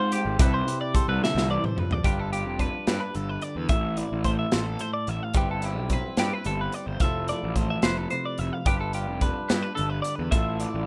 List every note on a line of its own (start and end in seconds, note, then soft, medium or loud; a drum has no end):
0.00 0.15 G#2 loud
0.00 0.36 G#3 medium
0.00 0.39 C4 medium
0.00 0.36 F4 medium
0.00 0.11 C5 medium
0.00 0.13 C5 medium
0.12 0.40 G4 medium
0.12 0.36 C5 medium
0.12 closed hi-hat medium
0.25 0.36 G#1 medium
0.39 0.60 C2 loud
0.39 2.01 C3 medium
0.39 2.01 E4 medium
0.39 0.67 G4 medium
0.39 0.53 A4 medium
0.39 0.94 B4 medium
0.39 kick loud
0.39 closed hi-hat loud
0.54 0.81 C5 medium
0.68 2.01 G4 medium
0.68 closed hi-hat medium
0.81 0.96 D5 medium
0.94 2.03 G3 medium
0.94 2.04 A4 medium
0.94 1.08 C5 medium
0.94 kick medium
0.94 closed hi-hat medium
1.08 1.19 C2 medium
1.08 1.22 B4 medium
1.22 1.48 D3 medium
1.22 1.50 E5 medium
1.22 snare medium
1.35 1.56 C2 medium
1.35 snare medium
1.48 1.76 E3 medium
1.48 1.65 D5 medium
1.64 1.79 C5 medium
1.64 mid tom medium
1.76 2.04 F3 medium
1.76 1.93 B4 medium
1.76 mid tom medium
1.91 2.05 D5 medium
1.91 floor tom loud
2.04 2.46 G1 medium
2.04 3.69 G3 medium
2.04 2.58 D4 medium
2.04 2.33 F4 medium
2.04 2.20 G4 medium
2.04 2.87 B4 medium
2.04 kick medium
2.04 closed hi-hat medium
2.20 2.32 A4 medium
2.33 3.67 F4 medium
2.33 2.60 G4 medium
2.33 closed hi-hat medium
2.46 2.67 F1 medium
2.59 3.66 D4 medium
2.59 2.87 B4 medium
2.59 kick medium
2.59 closed hi-hat soft
2.87 2.98 G2 medium
2.87 3.01 G4 medium
2.87 3.67 B4 medium
2.87 snare medium
2.87 closed hi-hat medium
3.00 3.15 B4 medium
3.15 3.36 G1 loud
3.15 3.70 D3 medium
3.15 3.29 A4 medium
3.15 closed hi-hat soft
3.29 3.42 B4 medium
3.42 3.56 D5 medium
3.42 closed hi-hat soft
3.56 3.66 E2 medium
3.56 3.69 B4 medium
3.69 4.01 A1 medium
3.69 4.79 A2 medium
3.69 3.98 E5 medium
3.69 kick loud
3.69 closed hi-hat medium
3.97 5.35 E4 medium
3.97 4.25 D5 medium
3.97 closed hi-hat medium
4.12 4.43 A1 medium
4.24 5.32 A3 medium
4.24 4.38 C5 medium
4.24 kick medium
4.24 closed hi-hat medium
4.39 4.53 E5 medium
4.52 4.75 A1 medium
4.52 5.36 A4 medium
4.52 4.66 C5 medium
4.52 snare loud
4.52 closed hi-hat medium
4.66 4.81 A4 medium
4.79 5.35 A2 medium
4.79 4.93 C5 medium
4.79 closed hi-hat medium
4.94 5.09 D5 medium
5.07 5.19 A1 loud
5.07 5.23 E5 medium
5.07 closed hi-hat medium
5.23 5.36 F5 medium
5.34 5.77 G1 medium
5.34 6.44 G3 medium
5.34 5.90 C4 medium
5.34 5.64 E4 medium
5.34 5.50 G4 medium
5.34 6.18 B4 medium
5.34 kick loud
5.34 closed hi-hat medium
5.51 5.65 A4 medium
5.62 7.02 E4 medium
5.62 5.93 G4 medium
5.62 closed hi-hat medium
5.77 5.98 B1 medium
5.90 7.01 C4 medium
5.90 6.19 B4 medium
5.90 kick medium
5.90 closed hi-hat medium
6.17 6.29 G2 medium
6.17 6.33 G4 medium
6.17 6.98 B4 medium
6.17 snare medium
6.17 closed hi-hat medium
6.33 6.46 B4 medium
6.44 6.67 G1 loud
6.44 7.01 G3 medium
6.44 6.60 A4 medium
6.44 closed hi-hat medium
6.61 6.74 B4 medium
6.72 6.87 D5 medium
6.72 closed hi-hat medium
6.87 6.98 G1 medium
6.87 7.01 C5 medium
7.00 7.32 F1 medium
7.00 8.69 F3 medium
7.00 7.55 A3 medium
7.00 7.29 E4 medium
7.00 8.67 F4 medium
7.00 7.29 E5 medium
7.00 kick loud
7.00 closed hi-hat medium
7.04 7.85 A4 medium
7.28 8.65 E4 medium
7.28 7.56 D5 medium
7.28 closed hi-hat medium
7.43 7.75 A1 medium
7.56 8.64 A3 medium
7.56 7.70 C5 medium
7.56 kick medium
7.56 closed hi-hat medium
7.70 7.84 E5 medium
7.82 8.05 F1 medium
7.82 8.64 B4 medium
7.82 7.98 C5 medium
7.82 snare loud
7.82 closed hi-hat medium
7.98 8.10 A4 medium
8.10 8.64 C3 medium
8.10 8.25 C5 medium
8.10 closed hi-hat soft
8.25 8.39 D5 medium
8.38 8.50 F1 loud
8.38 8.53 E5 medium
8.38 closed hi-hat medium
8.53 8.67 F5 medium
8.66 9.09 G1 medium
8.66 10.31 G3 medium
8.66 9.20 D4 medium
8.66 8.94 F4 medium
8.66 8.80 G4 medium
8.66 9.47 B4 medium
8.66 kick loud
8.66 closed hi-hat medium
8.81 8.94 A4 medium
8.93 10.30 F4 medium
8.93 9.22 G4 medium
8.93 closed hi-hat medium
9.09 9.30 F1 medium
9.21 10.29 D4 medium
9.21 9.50 B4 medium
9.21 kick medium
9.21 closed hi-hat medium
9.49 9.61 G2 medium
9.49 9.63 G4 medium
9.49 10.29 B4 medium
9.49 snare loud
9.49 closed hi-hat medium
9.63 9.75 B4 medium
9.75 10.00 G1 loud
9.75 10.32 D3 medium
9.75 9.90 A4 medium
9.75 closed hi-hat medium
9.90 10.02 B4 medium
10.02 10.16 D5 medium
10.02 closed hi-hat medium
10.16 10.30 E2 medium
10.16 10.31 B4 medium
10.31 10.64 A1 medium
10.31 10.86 A2 medium
10.31 10.86 A3 medium
10.31 10.59 E4 medium
10.31 10.86 F4 medium
10.31 10.86 A4 medium
10.31 10.60 E5 medium
10.31 kick loud
10.31 closed hi-hat medium
10.60 10.86 E4 medium
10.60 10.86 D5 medium
10.60 closed hi-hat medium
10.74 10.86 A1 medium